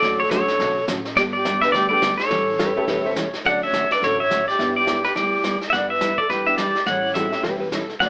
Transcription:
Already playing: shakuhachi A4, pedal steel guitar D5
0.02 upright bass D2, steel-string acoustic guitar D3 F#3 A3 C#4 F#4, brush sweep, kick, snare
0.20 shakuhachi A4, pedal steel guitar C#5
0.29 steel-string acoustic guitar D3 F#3 A3 C#4 F#4, honky-tonk piano A3 C#4 D4 F#4 A4, shakuhachi A4, pedal steel guitar C#5, kick, snare, hi-hat pedal
0.48 snare
0.59 upright bass B1, steel-string acoustic guitar D3 F#3 A3 C#4 F#4, brush sweep, kick, snare
0.88 upright bass A1, steel-string acoustic guitar D3 F#3 A3 C#4 F#4, kick, snare, hi-hat pedal
1.05 snare
1.16 upright bass G1, steel-string acoustic guitar D3 G3 B3 D4 G4, shakuhachi G4, pedal steel guitar D5, brush sweep, kick, snare
1.33 shakuhachi G4, pedal steel guitar D5
1.45 steel-string acoustic guitar D3 G3 B3 D4 G4, kick, snare, hi-hat pedal
1.61 honky-tonk piano G3 B3 D4 G4 B4, shakuhachi B4, pedal steel guitar E5, snare
1.72 upright bass D2, steel-string acoustic guitar D3 G3 B3 D4 G4, shakuhachi G4, pedal steel guitar D5, brush sweep, kick, snare
1.89 honky-tonk piano G3 B3 D4 G4 A4, shakuhachi G4, pedal steel guitar D5
2.02 steel-string acoustic guitar D3 G3 B3 D4 G4, kick, snare, hi-hat pedal
2.18 shakuhachi A4, pedal steel guitar C#5, snare
2.30 upright bass A1, steel-string acoustic guitar E3 G3 C#4 E4 A4, brush sweep, kick, snare
2.58 steel-string acoustic guitar E3 G3 C#4 E4 A4, electric slide guitar G4 B4, kick, snare, hi-hat pedal
2.76 honky-tonk piano A3 C#4 E4 G4 A4, electric slide guitar G4 B4
2.88 upright bass E1, steel-string acoustic guitar E3 G3 C#4 E4 A4, electric slide guitar G4 B4, brush sweep, kick, snare
3.06 electric slide guitar C5 E5
3.16 steel-string acoustic guitar E3 G3 C#4 E4 A4, electric slide guitar C#5, kick, snare, hi-hat pedal
3.33 snare
3.44 upright bass D2, steel-string acoustic guitar D3 F#3 A3 C#4 F#4, honky-tonk piano C#4 D4 F#4 A4, shakuhachi D5, pedal steel guitar F#5, brush sweep, kick, snare
3.63 shakuhachi C#5, pedal steel guitar E5
3.72 steel-string acoustic guitar D3 F#3 A3 C#4 F#4, kick, snare, hi-hat pedal
3.91 shakuhachi B4, pedal steel guitar D5, snare
4.01 upright bass A1, steel-string acoustic guitar D3 F#3 A3 C#4 F#4, shakuhachi A4, pedal steel guitar C#5, brush sweep, kick, snare
4.20 shakuhachi C#5, pedal steel guitar E5
4.30 steel-string acoustic guitar D3 F#3 A3 C#4 F#4, kick, snare, hi-hat pedal
4.48 shakuhachi G4, pedal steel guitar D5, snare
4.58 upright bass G1, steel-string acoustic guitar G3 B3 E4 G4, honky-tonk piano B3 D4 E4 G4, brush sweep, kick, snare
4.76 shakuhachi G4, pedal steel guitar D5
4.87 steel-string acoustic guitar G3 B3 E4 G4, kick, snare, hi-hat pedal
5.04 shakuhachi G4, pedal steel guitar B4, snare
5.15 upright bass D2, steel-string acoustic guitar G3 B3 E4 G4, shakuhachi G4, pedal steel guitar D5, brush sweep, kick, snare
5.44 steel-string acoustic guitar G3 B3 E4 G4, kick, snare, hi-hat pedal
5.61 snare
5.70 upright bass G1, steel-string acoustic guitar G3 D4 E4 B4, shakuhachi C#5 D5, pedal steel guitar E5 F#5, brush sweep, kick, snare
5.90 shakuhachi B4, pedal steel guitar E5
6.01 steel-string acoustic guitar G3 D4 E4 B4, kick, snare, hi-hat pedal
6.18 shakuhachi A4, pedal steel guitar D5, kick
6.29 upright bass E2, steel-string acoustic guitar G3 D4 E4 B4, shakuhachi G4, pedal steel guitar B4, brush sweep, kick, snare
6.46 honky-tonk piano B3 D4 E4 G4, shakuhachi B4, pedal steel guitar E5
6.58 steel-string acoustic guitar G3 D4 E4 B4, shakuhachi G4, pedal steel guitar D5, kick, snare, hi-hat pedal
6.75 snare
6.86 upright bass A1, steel-string acoustic guitar E3 G3 C#4 E4 A4, shakuhachi C#5, pedal steel guitar F#5, brush sweep, kick, snare
7.14 steel-string acoustic guitar E3 G3 C#4 E4 A4, honky-tonk piano G#3 C4 D#4 F#4, shakuhachi A4, pedal steel guitar E5, kick, snare, hi-hat pedal
7.31 honky-tonk piano A3 C#4 E4 G4, snare
7.43 upright bass E1, steel-string acoustic guitar E3 G3 C#4 E4 A4, electric slide guitar G4 B4, brush sweep, kick, snare
7.60 electric slide guitar G4 B4
7.72 steel-string acoustic guitar E3 G3 C#4 E4 A4, electric slide guitar A4, kick, snare, hi-hat pedal
7.89 snare
8.00 upright bass D2, steel-string acoustic guitar D3 F#3 A3 C#4 F#4, shakuhachi D5, pedal steel guitar F#5, brush sweep, kick, snare

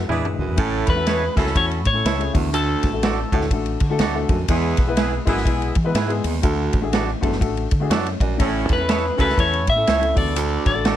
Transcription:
0.08 fingered electric bass E2, upright piano G#3 D4 E4, clean electric guitar E4 G#4 D5, horn section E4 G#4 B4, mid tom
0.25 floor tom
0.39 fingered electric bass D2, baritone saxophone F#2
0.48 fingered electric bass E2
0.56 fingered electric bass A1, baritone saxophone A2, upright piano A3 C#4 E4 A4, horn section C#4 E4 A4, kick, ride
0.86 fingered electric bass E2, clean electric guitar B4, glockenspiel B5, kick, snare, ride
0.95 upright piano A3 C#4 E4 F#4
1.07 clean electric guitar E4 A4 C#5, horn section E4 G#4 B4, snare, ride
1.35 fingered electric bass C#2, baritone saxophone F#2, upright piano A3 C#4 E4 A4, horn section C#4 E4 A4, kick, ride
1.46 snare
1.55 fingered electric bass E2, upright piano A3 C#4 E4 F#4, clean electric guitar C#5, glockenspiel C#6, kick, ride
1.71 ride
1.85 fingered electric bass A2, clean electric guitar C#5, glockenspiel C#6, kick, ride
1.93 upright piano A3 C#4 E4 A4
2.05 fingered electric bass C#2, clean electric guitar E4 A4 C#5, snare, ride
2.19 upright piano A3 C#4 E4 G#4, ride
2.33 fingered electric bass D2, baritone saxophone E2, upright piano A3 D4 F#4 A4, kick, open hi-hat, ride
2.53 baritone saxophone D2, clean electric guitar A4, glockenspiel A5, hi-hat pedal, ride
2.83 fingered electric bass A1, kick, snare, ride
2.92 upright piano A3 D4 F#4 A4
3.03 clean electric guitar F#4 A4 D5, snare, ride
3.32 fingered electric bass D2, baritone saxophone A2, upright piano A3 D4 F#4 A4, kick, ride
3.41 snare
3.51 fingered electric bass A1, upright piano A3 D4 F#4 A4, kick, ride
3.66 ride
3.80 fingered electric bass D3, kick, ride
3.90 upright piano A3 D4 F#4 A4
3.99 fingered electric bass D2, clean electric guitar F#4 A4, snare, ride
4.03 clean electric guitar D5
4.14 upright piano A3 D4 F#4 A4
4.29 fingered electric bass F2, baritone saxophone F#2, kick, ride
4.48 baritone saxophone E2, fingered electric bass E2, upright piano G#3 B3 E4 G#4, horn section B3 E4 G#4, kick, ride
4.77 fingered electric bass B1, kick, snare, ride
4.87 upright piano G#3 B3 E4 B4
4.97 clean electric guitar E4 G#4 B4, horn section E4 G#4 B4, snare, ride
5.25 fingered electric bass G#1, baritone saxophone F#2, upright piano G#3 B3 E4 G#4, horn section B3 E4 G#4, kick, ride
5.37 snare
5.45 fingered electric bass B1, upright piano G#3 B3 E4 G#4, kick, ride
5.62 ride
5.75 fingered electric bass E3, kick, ride
5.84 upright piano G#3 B3 E4 B4
5.94 fingered electric bass G#2, clean electric guitar E4 G#4 B4, snare, ride
6.08 upright piano G#3 B3 E4 G#4, ride
6.24 fingered electric bass D#2, baritone saxophone E2, open hi-hat, ride
6.42 baritone saxophone D2, fingered electric bass D2, upright piano A3 D4 F#4 A4, kick, hi-hat pedal, ride
6.73 fingered electric bass A1, kick, ride
6.81 upright piano A3 D4 F#4 G#4
6.93 clean electric guitar F#4 A4 D5, snare, ride
7.21 fingered electric bass F#1, baritone saxophone E2, upright piano A3 D4 F#4 A4, kick, ride
7.32 snare
7.39 fingered electric bass A1, upright piano A3 D4 F#4 A4, kick, ride
7.57 ride
7.71 fingered electric bass D3, kick, ride
7.80 upright piano A3 D4 F#4 G#4
7.89 fingered electric bass F#2, upright piano E4 C#5, clean electric guitar F#4 A4 D5, snare, ride
8.06 ride
8.20 fingered electric bass A#1, baritone saxophone F#2, upright piano F#4 D5, kick, ride
8.37 fingered electric bass A1, baritone saxophone A2, upright piano A3 C#4 E4 A4, horn section C#4 E4 A4, kick, ride
8.69 fingered electric bass E2, clean electric guitar B4, kick, snare, ride
8.73 upright piano A3, glockenspiel B5
8.78 upright piano C#4 E4 B4
8.89 clean electric guitar E4 A4 C#5, horn section E4 G#4 B4, snare, ride
9.16 fingered electric bass C#2, baritone saxophone F#2, upright piano A3 C#4 E4 A4, horn section C#4 E4 A4, kick, ride
9.21 clean electric guitar B4, glockenspiel B5
9.29 snare
9.36 fingered electric bass E2, upright piano A3 C#4 E4 B4, kick, ride
9.40 clean electric guitar C#5, glockenspiel C#6
9.53 ride
9.67 fingered electric bass A2, clean electric guitar E5, kick, ride
9.72 upright piano A3, glockenspiel E6
9.76 upright piano C#4 E4 A4
9.87 fingered electric bass C#2, clean electric guitar E4 A4 C#5, snare, ride
10.00 upright piano A3 C#4 E4 A4, ride
10.14 fingered electric bass D2, baritone saxophone E2, upright piano A3 D4 F#4 A4, clean electric guitar D5, kick, open hi-hat, ride
10.20 glockenspiel D6
10.36 baritone saxophone D2, hi-hat pedal, ride
10.66 fingered electric bass A1, clean electric guitar D5, glockenspiel D6, kick, snare, ride
10.73 upright piano A3 D4 F#4 A4
10.85 clean electric guitar F#4 A4 D5, snare, ride

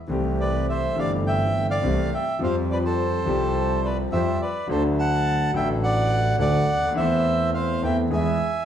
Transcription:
0.07 double bass C2, grand piano C2 C3 E3 A3 C4
0.12 grand piano G4
0.40 bandoneon B4 D5
0.70 bandoneon C5 E5
0.95 double bass G1, grand piano G1 G2 E3 A3 C4 G4, bandoneon F5
1.00 bandoneon D5
1.27 bandoneon E5 G5
1.70 bandoneon D5 F5
1.83 double bass C2, grand piano C2 C3 E3 A3 C4 G4
2.13 bandoneon E5 G5
2.39 double bass F2, grand piano F2 F3 G3 C4 G4
2.43 bandoneon C5 F5
2.71 bandoneon B4 D5
2.85 bandoneon A4 C5
3.25 double bass C2, grand piano C2 C3 F3 G3 C4 G4
3.85 bandoneon B4 D5
4.11 double bass F2, grand piano F2 F3 G3 C4 G4, bandoneon C5 E5
4.42 bandoneon B4 D5
4.67 double bass D2, grand piano D2 D3 F#3 A3 D4 A4, bandoneon C5
4.71 bandoneon A4
4.99 bandoneon F#5 A5
5.52 double bass A1, grand piano A1 A2 F#3 A3 D4, bandoneon G5
5.56 grand piano A4, bandoneon E5
5.83 bandoneon D5 F#5
6.38 double bass D2, grand piano D2 D3 F#3 A3 D4 A4, bandoneon D5 F#5
6.67 double bass D2
6.74 grand piano C#2
6.81 grand piano D2
6.88 grand piano D#2
6.95 double bass E2, grand piano E2 E3 A3 C4 A4, bandoneon C5 E5
7.54 bandoneon C5 F5
7.82 double bass E2, grand piano E2 E3 A3 C4 A4, bandoneon E5 G5
8.10 grand piano E2 E3 G#3 B3 G#4, double bass E2, bandoneon G#5
8.15 bandoneon E5

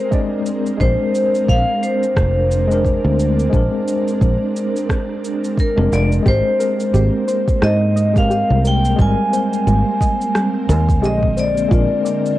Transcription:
Already playing: tine electric piano G#3 C4 G4 A#4, ambient pad G#3 C4 A#4, vibraphone C5
0.11 tine electric piano G#3 C4 D4 D5, kick, cabasa
0.45 ambient pad D4, cabasa
0.66 cabasa
0.77 fingered electric bass A#1, tine electric piano G#3 C4 D4, vibraphone C5, kick, cabasa
0.83 tine electric piano A#4
1.15 cabasa
1.35 cabasa
1.48 fingered electric bass A#1, vibraphone F5, kick, cabasa
1.83 vibraphone C5, cabasa
2.03 cabasa
2.16 fingered electric bass F1, kick, cross-stick, cabasa
2.51 cabasa
2.68 tine electric piano G#3 C4 D4, cabasa
2.74 tine electric piano A#4
2.85 kick, cabasa
3.05 fingered electric bass D2
3.20 cabasa
3.39 cabasa
3.50 fingered electric bass A#1, tine electric piano G#3 C4, kick, cabasa
3.54 tine electric piano D4 A#4
3.88 cabasa
4.08 cabasa
4.21 fingered electric bass A#1, kick, cabasa
4.56 cabasa
4.76 cabasa
4.89 kick, cross-stick, cabasa
5.25 cabasa
5.44 cabasa
5.58 vibraphone A#4, kick, cabasa
5.76 fingered electric bass F1, tine electric piano G#3 C4 D4 A#4
5.92 fingered electric bass F1, vibraphone D5, cabasa
6.12 cabasa
6.23 fingered electric bass G#1, tine electric piano G#3 C4 G4, ambient pad A#3 C4, synth arpeggio sound G4, kick, cabasa
6.28 tine electric piano A#4, vibraphone C5
6.60 synth arpeggio sound A#4, cabasa
6.80 cabasa
6.94 fingered electric bass G#1, synth arpeggio sound G4, cabasa
7.28 synth arpeggio sound C5, cabasa
7.48 kick, cabasa
7.62 fingered electric bass G#2, synth arpeggio sound G4, vibraphone D#5, cross-stick, cabasa
7.96 synth arpeggio sound D#5, cabasa
8.14 tine electric piano G#3 C4 G4, kick, cabasa
8.18 tine electric piano A#4, vibraphone F5
8.30 synth arpeggio sound G4, cabasa
8.50 fingered electric bass C2
8.64 synth arpeggio sound A#4, vibraphone G5, cabasa
8.85 cabasa
8.96 fingered electric bass G#1, synth arpeggio sound G3, tine electric piano G#3 C4, kick, cabasa
9.00 tine electric piano G3 A#4, vibraphone G#5
9.33 synth arpeggio sound C5, cabasa
9.53 cabasa
9.67 fingered electric bass G#1, synth arpeggio sound G3, cabasa
10.01 synth arpeggio sound D#5, kick, cabasa
10.21 cabasa
10.35 synth arpeggio sound G3, cross-stick, cabasa
10.69 fingered electric bass D#2, synth arpeggio sound A#4, cabasa
10.89 kick, cabasa
11.02 fingered electric bass A#1, tine electric piano D3 G#3 C4 D#5, synth arpeggio sound G4, vibraphone D#5, cabasa
11.23 kick
11.37 ambient pad D3, synth arpeggio sound C5, vibraphone D5, cabasa
11.58 cabasa
11.69 fingered electric bass A#1, tine electric piano G#3 C4 D4, synth arpeggio sound F4, kick, cabasa
11.74 tine electric piano A#4
12.05 synth arpeggio sound D5, cabasa
12.26 cabasa

